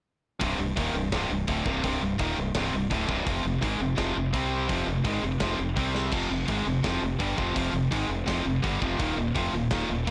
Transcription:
0.40 fingered electric bass C1, distorted electric guitar C2 G2 C3, kick, open hi-hat
0.57 fingered electric bass C1, distorted electric guitar C2 G2
0.76 fingered electric bass D#1, distorted electric guitar D#2 A#2 D#3, kick, open hi-hat
0.94 fingered electric bass C1, distorted electric guitar C2 G2
1.12 fingered electric bass C1, distorted electric guitar C2 G2 C3, kick, snare, open hi-hat
1.30 fingered electric bass C1, distorted electric guitar C2 G2
1.48 fingered electric bass D1, distorted electric guitar D2 A2 D3, kick, open hi-hat
1.65 fingered electric bass C1, distorted electric guitar C2 G2 C3, kick
1.83 fingered electric bass C1, distorted electric guitar C2 G2 C3, kick, open hi-hat
2.02 fingered electric bass C1, distorted electric guitar C2 G2
2.19 fingered electric bass D#1, distorted electric guitar D#2 A#2 D#3, kick, open hi-hat
2.38 fingered electric bass C1, distorted electric guitar C2 G2
2.55 fingered electric bass C1, distorted electric guitar C2 G2 C3, kick, snare, open hi-hat
2.73 fingered electric bass C1, distorted electric guitar C2 G2
2.90 fingered electric bass D1, distorted electric guitar D2 A2 D3, kick, open hi-hat
3.07 fingered electric bass C1, distorted electric guitar C2 G2 C3, kick
3.24 fingered electric bass F1, distorted electric guitar F2 C3 F3, kick, open hi-hat
3.43 fingered electric bass F1, distorted electric guitar F2 C3
3.61 fingered electric bass G#1, distorted electric guitar G#2 D#3 G#3, kick, open hi-hat
3.79 fingered electric bass F1, distorted electric guitar F2 C3
3.97 fingered electric bass F1, distorted electric guitar F2 C3 F3, kick, snare, open hi-hat
4.14 fingered electric bass F1, distorted electric guitar F2 C3
4.33 fingered electric bass C2, distorted electric guitar C3 G3 C4, kick, open hi-hat
4.68 fingered electric bass F1, distorted electric guitar F2 C3 F3, kick, open hi-hat
4.86 fingered electric bass F1, distorted electric guitar F2 C3
5.04 fingered electric bass G#1, distorted electric guitar G#2 D#3 G#3, kick, open hi-hat
5.23 fingered electric bass F1, distorted electric guitar F2 C3
5.40 fingered electric bass F1, distorted electric guitar F2 C3 F3, kick, snare, open hi-hat
5.59 fingered electric bass F1, distorted electric guitar F2 C3
5.76 fingered electric bass C2, distorted electric guitar C3 G3 C4, kick, open hi-hat
5.95 snare
6.11 fingered electric bass F1, distorted electric guitar F2 C3 F3, kick, splash, crash
6.30 fingered electric bass F1, distorted electric guitar F2 C3
6.48 fingered electric bass G#1, distorted electric guitar G#2 D#3 G#3, kick, open hi-hat
6.66 fingered electric bass F1, distorted electric guitar F2 C3
6.84 fingered electric bass F1, distorted electric guitar F2 C3 F3, kick, snare, open hi-hat
7.02 fingered electric bass F1, distorted electric guitar F2 C3
7.18 fingered electric bass G1, distorted electric guitar G2 D3 G3, kick, open hi-hat
7.37 fingered electric bass F1, distorted electric guitar F2 C3 F3, kick
7.54 fingered electric bass F1, distorted electric guitar F2 C3 F3, kick, open hi-hat
7.72 fingered electric bass F1, distorted electric guitar F2 C3
7.91 fingered electric bass G#1, distorted electric guitar G#2 D#3 G#3, kick, open hi-hat
8.08 fingered electric bass F1, distorted electric guitar F2 C3
8.26 fingered electric bass F1, distorted electric guitar F2 C3 F3, kick, snare, open hi-hat
8.45 fingered electric bass F1, distorted electric guitar F2 C3
8.62 fingered electric bass G1, distorted electric guitar G2 D3 G3, kick, open hi-hat
8.81 fingered electric bass F1, distorted electric guitar F2 C3 F3, kick
8.98 fingered electric bass D#1, distorted electric guitar D#2 A#2 D#3, kick, open hi-hat
9.17 fingered electric bass D#1, distorted electric guitar D#2 A#2
9.35 fingered electric bass F1, distorted electric guitar F2 C3 F3, kick, open hi-hat
9.53 fingered electric bass D#1, distorted electric guitar D#2 A#2
9.71 fingered electric bass D#1, distorted electric guitar D#2 A#2 D#3, kick, snare, open hi-hat
9.89 fingered electric bass D#1, distorted electric guitar D#2 A#2
10.07 fingered electric bass A#1, distorted electric guitar A#2 F3 A#3, kick

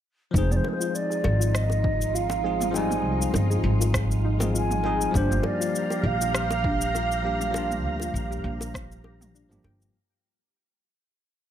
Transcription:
0.31 upright bass F1, tine electric piano F3 G#3 C4, string machine D#4 F4, synth arpeggio sound D#4, flute C5, kick
0.36 tine electric piano D#4 G#4, shaker
0.51 flute D5, mid tom, shaker
0.56 flute C5
0.64 high bongo
0.69 flute G#4
0.73 flute C5
0.80 synth arpeggio sound F4, shaker
0.95 flute D5, shaker
1.10 synth arpeggio sound G#4, shaker
1.24 upright bass G#1, high bongo
1.40 synth arpeggio sound F4, shaker
1.55 flute D#5, cross-stick, shaker
1.70 high bongo, shaker
1.84 synth arpeggio sound D#4, kick
2.02 shaker
2.14 synth arpeggio sound F4, flute F5, shaker
2.30 high bongo, shaker
2.43 tine electric piano F3 G#3 C4 D#4 G#4, synth arpeggio sound G#4
2.60 mid tom, shaker
2.71 tine electric piano F3 G#3 C4, synth arpeggio sound D#4, flute G#5, high bongo
2.76 tine electric piano G3 D#4, shaker
2.91 mid tom, shaker
3.04 upright bass C2
3.21 synth arpeggio sound F4, shaker
3.34 upright bass G1, high bongo, shaker
3.50 synth arpeggio sound G#4, shaker
3.64 upright bass G#1
3.80 synth arpeggio sound F4, high bongo, shaker
3.94 kick, cross-stick, shaker
4.11 shaker
4.25 synth arpeggio sound D#4
4.39 tine electric piano F3 G#3 C4 D#4 G#4, mid tom, high bongo, shaker
4.55 synth arpeggio sound F4, flute G#5, shaker
4.71 mid tom, shaker
4.83 tine electric piano F3 G#3 C4 D#4 G#4, synth arpeggio sound G#4, high bongo
5.01 shaker
5.11 upright bass G1, tine electric piano F3 G3 A#3, synth arpeggio sound D4, string machine G4 F5, kick
5.15 tine electric piano D4 G4, flute C5, string machine A#5, shaker
5.31 mid tom, shaker
5.43 flute D5, high bongo
5.60 synth arpeggio sound F4, shaker
5.75 shaker
5.90 synth arpeggio sound G4, high bongo, shaker
6.03 upright bass A#1, flute F5
6.21 synth arpeggio sound F4, shaker
6.35 flute F5, cross-stick, shaker
6.51 high bongo, shaker
6.64 synth arpeggio sound D4, kick
6.81 shaker
6.95 synth arpeggio sound F4, high bongo, shaker
7.12 shaker
7.22 tine electric piano F3 G3 A#3 D4 G4, synth arpeggio sound G4
7.40 mid tom, shaker
7.51 tine electric piano F3 G3 A#3, synth arpeggio sound D4, high bongo
7.56 tine electric piano D4 F4, shaker
7.71 mid tom, shaker
7.84 upright bass D2
8.00 synth arpeggio sound F4, high bongo, shaker
8.14 upright bass A#1, shaker
8.31 synth arpeggio sound G4, shaker
8.44 upright bass A#1
8.60 synth arpeggio sound F4, high bongo, shaker
8.74 kick, cross-stick, shaker
8.92 shaker
9.04 synth arpeggio sound G4, high bongo
9.21 mid tom, shaker
9.35 synth arpeggio sound D4, shaker
9.49 upright bass G1, tine electric piano F3 G3 A#3 D4 G4, mid tom, shaker
9.64 upright bass G1, synth arpeggio sound G5, high bongo
9.82 shaker

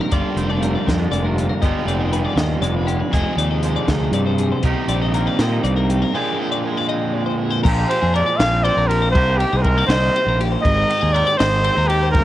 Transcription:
Already playing: clean electric guitar D#3 D#4 G4, overdriven electric guitar G3 C4 D#4 G4
0.01 clean electric guitar A#4
0.11 fingered electric bass G1, overdriven electric guitar G2 D3 G3 A#3 D4 G4, clean electric guitar G2 F4 D5, kick, closed hi-hat
0.36 fingered electric bass F1, clean electric guitar C4 C5, closed hi-hat
0.50 clean electric guitar D4 D5
0.61 clean electric guitar G3 A#3 A#4, closed hi-hat
0.75 clean electric guitar D5
0.86 fingered electric bass F2, clean electric guitar C4 D#5, kick, snare, closed hi-hat
0.99 clean electric guitar D4
1.11 fingered electric bass F1, clean electric guitar D3 G#3 D5, closed hi-hat
1.24 clean electric guitar A#3 A#4
1.37 clean electric guitar G4, closed hi-hat
1.49 clean electric guitar A#4
1.61 fingered electric bass G1, overdriven electric guitar G2 D3 F3 B3 D4 G4, clean electric guitar G2 G3 G#3 D#4 D#5, kick, closed hi-hat
1.65 clean electric guitar F4
1.85 fingered electric bass F1, clean electric guitar C4 D5, closed hi-hat
2.01 clean electric guitar D#5
2.11 clean electric guitar G3 G#3 B4, closed hi-hat
2.25 clean electric guitar D5
2.36 fingered electric bass D#2, clean electric guitar D#5, snare, closed hi-hat
2.61 fingered electric bass F1, clean electric guitar D3 G#3 D5, closed hi-hat
2.75 clean electric guitar B4
2.87 clean electric guitar G4, closed hi-hat
2.99 clean electric guitar B4
3.11 fingered electric bass F1, overdriven electric guitar F2 C3 F3 G#3 C4, clean electric guitar F2 G#4 D#5, kick, closed hi-hat
3.15 overdriven electric guitar G#4
3.37 fingered electric bass D#2, clean electric guitar D#4 D5, closed hi-hat
3.51 clean electric guitar D#5
3.63 clean electric guitar F3 G#3 C5, closed hi-hat
3.76 clean electric guitar D5
3.88 fingered electric bass D2, clean electric guitar D#4 D#5, kick, snare, closed hi-hat
4.11 fingered electric bass G2, clean electric guitar C3 D5, closed hi-hat
4.26 clean electric guitar C5
4.38 clean electric guitar G#4, closed hi-hat
4.52 clean electric guitar C5
4.62 fingered electric bass C2, overdriven electric guitar C3 G3 C4 D#4 G4, clean electric guitar C3 D#3 A#3 D#4 D#5, kick, closed hi-hat
4.67 clean electric guitar G4
4.88 fingered electric bass A#1, clean electric guitar C4 D5, closed hi-hat
5.01 clean electric guitar D#4 D#5
5.14 clean electric guitar D#3 A#3 A#4, closed hi-hat
5.27 clean electric guitar D5
5.39 fingered electric bass A#2, clean electric guitar C4 D#5, snare, closed hi-hat
5.52 clean electric guitar D#4
5.64 fingered electric bass C2, clean electric guitar G2 A#3 D5, closed hi-hat
5.76 clean electric guitar A#4
5.90 clean electric guitar G4, closed hi-hat
6.02 clean electric guitar A#4
6.13 overdriven electric guitar A#2 D3 F3 A#3 D4 G#4, clean electric guitar A#2 F3 G#3 C4 D5
6.17 clean electric guitar G#4
6.38 clean electric guitar C4 C5
6.52 clean electric guitar D5
6.65 clean electric guitar F3 G#3 A#4
6.77 clean electric guitar D5
6.89 clean electric guitar C4 D#5
7.13 clean electric guitar F2 G#3 D5
7.26 clean electric guitar C5
7.38 clean electric guitar G#4
7.51 clean electric guitar C5
7.64 fingered electric bass A#1, clean electric guitar A#2 F3 G#3 A#4, kick, crash
7.68 clean electric guitar C4 G4
7.89 clean electric guitar F3 G4, trumpet C5, ride
8.02 fingered electric bass F2, clean electric guitar G#4
8.14 clean electric guitar G#3 A#4, trumpet D5, ride
8.26 clean electric guitar D5
8.37 fingered electric bass A#1, clean electric guitar F2 F5, trumpet F5, snare, ride
8.63 clean electric guitar C4 C5, trumpet D5, ride
8.77 fingered electric bass A#1, clean electric guitar A#4
8.88 clean electric guitar F3 G4, trumpet A#4, ride
9.02 clean electric guitar C5
9.11 fingered electric bass C2, clean electric guitar C3 D#3, trumpet C5
9.15 clean electric guitar A#3 D4 G4 A#4, kick, ride
9.38 clean electric guitar D#3 G4, trumpet G4, ride
9.53 fingered electric bass C2, clean electric guitar G#4
9.57 trumpet C5
9.62 clean electric guitar G#3 A#4, trumpet A#4, kick, ride
9.77 clean electric guitar A#3 D5
9.87 fingered electric bass C2, clean electric guitar D3, trumpet C5, snare, ride
9.91 clean electric guitar D#5
10.13 clean electric guitar C3 C5, ride
10.26 fingered electric bass A#1, clean electric guitar A#4
10.39 clean electric guitar A#2 G4, ride
10.52 clean electric guitar C5
10.62 fingered electric bass G#1, clean electric guitar G#2 A#4, trumpet D#5, kick, ride
10.89 clean electric guitar D#3 G4, ride
11.01 fingered electric bass D#2, clean electric guitar G#4
11.12 clean electric guitar C4 A#4, trumpet D5, ride
11.27 clean electric guitar D5
11.37 fingered electric bass G#1, clean electric guitar G#2 D#5, trumpet C5, snare, ride
11.64 clean electric guitar C4 C5, ride
11.76 fingered electric bass D#2, clean electric guitar D#4 A#4
11.87 clean electric guitar D#3 G4, trumpet G4, ride
12.03 clean electric guitar C5
12.11 fingered electric bass G1, clean electric guitar G#2 A#4, trumpet A#4, kick, ride

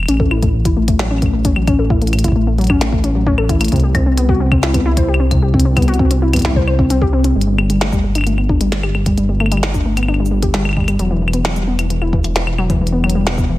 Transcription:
0.03 claves
0.06 detuned saw bass A1, synth pluck C#4, closed hi-hat, claves
0.11 claves
0.14 claves
0.17 synth pluck A4, kick, claves
0.31 synth pluck E4, claves
0.43 synth pluck A3, kick, closed hi-hat
0.54 synth pluck A2
0.65 synth pluck E4, kick, closed hi-hat
0.77 synth pluck A3
0.88 synth pluck A3, kick, closed hi-hat
0.99 synth pluck F#3, snare
1.11 synth pluck C#4, claves
1.18 synth pluck A3, kick, closed hi-hat, claves
1.26 claves
1.33 synth pluck A3
1.45 synth pluck C#4, kick, closed hi-hat
1.56 synth pluck F#3, claves
1.68 synth pluck C#4, kick, closed hi-hat, claves
1.79 synth pluck A4
1.90 synth pluck E4, kick
2.02 synth pluck A3, closed hi-hat
2.07 closed hi-hat
2.13 synth pluck A2, closed hi-hat, claves
2.19 closed hi-hat
2.24 synth pluck E4, kick, closed hi-hat
2.28 kick
2.32 synth pluck A3, kick
2.47 synth pluck A3
2.58 synth pluck F#3, closed hi-hat
2.61 closed hi-hat
2.64 closed hi-hat
2.67 synth pluck C#4, kick, closed hi-hat, claves
2.81 synth pluck A3, snare, closed hi-hat
2.92 synth pluck A3, kick
3.04 synth pluck C#4, closed hi-hat
3.15 synth pluck F#3
3.27 synth pluck C#4, kick
3.38 synth pluck A4, claves
3.49 synth pluck E4, kick, closed hi-hat
3.61 synth pluck A3, closed hi-hat, claves
3.65 closed hi-hat
3.68 detuned saw bass C2, synth pluck C3, kick, closed hi-hat
3.72 closed hi-hat
3.76 closed hi-hat
3.80 synth pluck G4, closed hi-hat
3.95 synth pluck C4, kick, closed hi-hat, claves
4.06 synth pluck C4
4.17 synth pluck B3, closed hi-hat
4.29 synth pluck F#4, kick
4.40 synth pluck C4
4.52 synth pluck C4, kick, claves
4.63 synth pluck E4, snare
4.74 synth pluck B3, kick, closed hi-hat, claves
4.86 synth pluck E4
4.97 synth pluck C5, kick, closed hi-hat
5.08 synth pluck G4
5.14 claves
5.20 synth pluck C4
5.31 synth pluck C3, kick, closed hi-hat, claves
5.42 synth pluck G4
5.54 synth pluck C4, kick
5.60 closed hi-hat
5.65 synth pluck C4
5.77 synth pluck B3, kick, closed hi-hat, claves
5.82 closed hi-hat
5.88 synth pluck F#4, closed hi-hat
5.94 closed hi-hat
5.99 synth pluck C4, kick
6.11 synth pluck C4, closed hi-hat
6.22 synth pluck E4
6.33 synth pluck B3, kick, closed hi-hat, claves
6.36 kick, closed hi-hat
6.39 kick, closed hi-hat
6.42 synth pluck E4, kick, snare, closed hi-hat
6.49 kick
6.52 synth pluck C5, kick
6.56 kick
6.68 synth pluck C5, claves
6.79 synth pluck C4, kick
6.90 synth pluck C4, closed hi-hat
7.02 synth pluck G4, kick
7.13 synth pluck C4
7.24 synth pluck C4, closed hi-hat
7.36 detuned saw bass G1, synth pluck G3
7.41 closed hi-hat
7.47 synth pluck G3
7.58 synth pluck G3, claves
7.70 synth pluck G3, closed hi-hat
7.81 synth pluck A3, snare, closed hi-hat
7.93 synth pluck G3, kick, shaker
8.04 synth pluck G3
8.15 synth pluck D4, closed hi-hat, claves
8.18 claves
8.21 claves
8.24 synth pluck A3, closed hi-hat, claves
8.38 synth pluck B3, claves
8.49 synth pluck D4, kick
8.61 synth pluck G3, closed hi-hat, shaker
8.72 synth pluck G3, snare, closed hi-hat
8.83 synth pluck G4, claves
8.95 synth pluck G3, claves
9.06 synth pluck G3, kick, closed hi-hat
9.18 synth pluck G3, closed hi-hat
9.29 synth pluck G3
9.40 synth pluck A3, claves
9.46 claves
9.52 synth pluck G3, closed hi-hat, claves
9.57 claves
9.63 snare, closed hi-hat
9.74 synth pluck D4, kick, shaker
9.86 synth pluck A3
9.97 synth pluck B3, closed hi-hat, claves
10.03 claves
10.08 synth pluck D4, claves
10.14 claves
10.20 synth pluck G3
10.25 shaker
10.31 synth pluck G3
10.43 synth pluck G4, kick, closed hi-hat
10.54 synth pluck G3, snare, closed hi-hat
10.65 synth pluck G3, claves
10.69 claves
10.73 claves
10.77 synth pluck G3, kick, claves
10.80 claves
10.84 closed hi-hat, claves
10.88 synth pluck G3, claves
10.99 detuned saw bass E1, synth pluck F#3, closed hi-hat
11.11 synth pluck E3
11.22 synth pluck E3
11.28 claves
11.33 synth pluck B3, closed hi-hat
11.45 synth pluck F#3, snare, closed hi-hat
11.56 synth pluck G3, shaker
11.68 synth pluck B3
11.79 synth pluck E3, closed hi-hat, claves
11.90 synth pluck E3, closed hi-hat
12.02 synth pluck E4, claves
12.13 synth pluck E3, kick
12.24 synth pluck E3, closed hi-hat, shaker
12.36 synth pluck E3, snare, closed hi-hat
12.47 synth pluck E3, claves
12.58 synth pluck F#3, claves
12.70 synth pluck E3, kick, closed hi-hat
12.81 synth pluck E3
12.87 closed hi-hat
12.93 synth pluck B3
13.04 synth pluck F#3, claves
13.10 closed hi-hat
13.15 synth pluck G3
13.27 synth pluck B3, snare, closed hi-hat
13.38 synth pluck E3, kick, shaker
13.49 synth pluck E3

